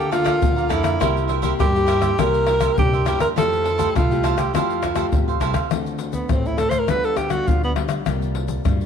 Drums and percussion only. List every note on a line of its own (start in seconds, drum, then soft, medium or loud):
0.00 pandeiro soft
0.00 shaker soft
0.12 pandeiro medium
0.12 tamborim medium
0.12 shaker medium
0.26 pandeiro medium
0.26 tamborim medium
0.26 shaker medium
0.26 surdo soft
0.42 pandeiro medium
0.42 shaker medium
0.42 surdo loud
0.58 pandeiro soft
0.58 shaker soft
0.70 pandeiro medium
0.70 tamborim medium
0.70 shaker medium
0.84 pandeiro medium
0.84 tamborim medium
0.84 shaker medium
0.84 surdo soft
1.01 pandeiro medium
1.01 tamborim medium
1.01 shaker medium
1.01 surdo medium
1.17 pandeiro soft
1.17 shaker soft
1.29 pandeiro medium
1.43 pandeiro medium
1.43 shaker medium
1.43 surdo soft
1.60 pandeiro medium
1.60 tamborim medium
1.60 shaker medium
1.60 surdo loud
1.76 pandeiro soft
1.76 shaker soft
1.88 pandeiro medium
1.88 tamborim medium
1.88 shaker medium
2.02 pandeiro medium
2.02 tamborim medium
2.02 shaker medium
2.02 surdo soft
2.19 pandeiro medium
2.19 tamborim medium
2.19 shaker medium
2.19 surdo medium
2.34 pandeiro soft
2.34 shaker soft
2.47 pandeiro medium
2.47 tamborim medium
2.60 pandeiro medium
2.60 tamborim medium
2.60 shaker medium
2.60 surdo soft
2.78 pandeiro medium
2.78 shaker medium
2.78 surdo loud
2.94 pandeiro soft
2.94 shaker soft
3.06 pandeiro medium
3.06 tamborim medium
3.06 shaker medium
3.20 pandeiro medium
3.20 tamborim medium
3.20 shaker medium
3.20 surdo soft
3.38 pandeiro medium
3.38 tamborim medium
3.38 shaker medium
3.38 surdo medium
3.53 pandeiro soft
3.53 shaker soft
3.65 pandeiro medium
3.79 pandeiro medium
3.79 shaker medium
3.79 surdo soft
3.96 pandeiro medium
3.96 tamborim medium
3.96 shaker medium
3.96 surdo loud
4.12 pandeiro soft
4.12 shaker soft
4.24 pandeiro medium
4.24 tamborim medium
4.24 shaker medium
4.38 pandeiro medium
4.38 tamborim medium
4.38 shaker medium
4.38 surdo soft
4.55 pandeiro medium
4.55 tamborim medium
4.55 shaker medium
4.55 surdo medium
4.70 pandeiro soft
4.70 shaker soft
4.83 pandeiro medium
4.83 tamborim medium
4.83 shaker medium
4.83 surdo soft
4.96 pandeiro medium
4.96 tamborim medium
4.96 shaker medium
4.96 surdo soft
5.12 pandeiro medium
5.12 shaker medium
5.12 surdo loud
5.29 pandeiro soft
5.29 shaker soft
5.41 pandeiro medium
5.41 tamborim medium
5.41 shaker medium
5.54 pandeiro medium
5.54 tamborim medium
5.54 shaker medium
5.54 surdo soft
5.71 pandeiro medium
5.71 tamborim medium
5.71 shaker medium
5.71 surdo medium
5.86 pandeiro soft
5.86 shaker soft
5.99 pandeiro medium
5.99 shaker medium
6.13 pandeiro soft
6.13 shaker medium
6.13 surdo soft
6.29 pandeiro medium
6.29 tamborim medium
6.29 shaker medium
6.29 surdo medium
6.46 pandeiro soft
6.46 shaker soft
6.58 pandeiro medium
6.58 tamborim medium
6.58 shaker medium
6.71 pandeiro medium
6.71 tamborim medium
6.71 shaker medium
6.71 surdo soft
6.88 pandeiro medium
6.88 tamborim medium
6.88 shaker medium
6.88 surdo medium
7.04 pandeiro soft
7.04 shaker soft
7.17 pandeiro medium
7.17 tamborim medium
7.17 shaker medium
7.17 surdo soft
7.30 pandeiro medium
7.30 tamborim medium
7.30 shaker medium
7.30 surdo soft
7.48 pandeiro medium
7.48 shaker medium
7.48 surdo medium
7.64 pandeiro soft
7.64 shaker soft
7.76 pandeiro medium
7.76 tamborim medium
7.89 pandeiro medium
7.89 tamborim medium
7.89 shaker medium
7.89 surdo soft
8.06 pandeiro medium
8.06 tamborim medium
8.06 shaker medium
8.06 surdo medium
8.22 pandeiro soft
8.22 shaker soft
8.35 pandeiro medium
8.48 pandeiro medium
8.48 shaker medium
8.48 surdo soft
8.65 pandeiro medium
8.65 tamborim medium
8.65 shaker medium
8.65 surdo loud
8.81 pandeiro soft
8.81 shaker soft